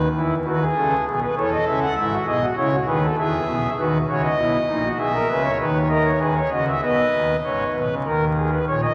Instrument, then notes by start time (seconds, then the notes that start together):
pipe organ
0.15 E2 E3 E4
0.45 D#2 D#3 F#4 B4
0.61 G#4
0.76 C#2 C#3 A4
1.07 B1 B2 G#4
1.22 B4
1.37 E2 E3 A4 C#5
1.52 D#5
1.67 C#2 C#3 E5
1.81 F#5
1.96 G#1 G#2 E4 E5
2.12 F#4
2.26 B1 B2 G#4 D#5
2.42 F#4
2.57 C#2 C#3 E4 C#5
2.73 F#4
2.87 D#2 D#3 G#4 B4
3.02 A4
3.18 E2 E3 G#4 E5
3.48 B1 B2
3.79 D#2 D#3 F#4 B4
4.09 C#2 C#3 F#4 C#5
4.23 D#5
4.38 B1 B2 E4
4.69 A#1 A#2 D#4
4.84 F#4
4.99 B1 B2 G#4 E5
5.14 A#4
5.29 C#2 C#3 B4
5.44 C#5
5.59 D#2 D#3 B4
5.75 C#5
5.90 A#4 D#5
6.05 C#5
6.20 D#2 D#3 G#4 B4
6.36 C#5
6.51 C#2 C#3 F#4 D#5
6.68 E5
6.82 B1 B2 B4 D#5
7.14 D#2 D#3
7.44 G#1 G#2 C#5
7.75 B1 B2 B4
7.90 C#2 C#3
8.05 D#2 D#3 A#4
8.37 G#4
8.52 B4
8.67 A#1 A#2 C#5
8.82 D#5